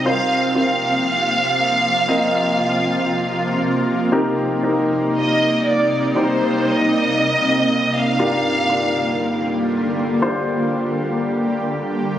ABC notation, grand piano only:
X:1
M:4/4
L:1/8
Q:1/4=59
K:Cm
V:1 name="Grand piano"
[CFBc] [CFBc]3 [CFBe]4 | [CEGB] [CEGB]3 [CEGc]4 | [DFGB] [DFGB]3 [DFGc]4 |]
V:2 name="Grand piano" clef=bass
z8 | C,3 z4 z | G,,3 z4 z |]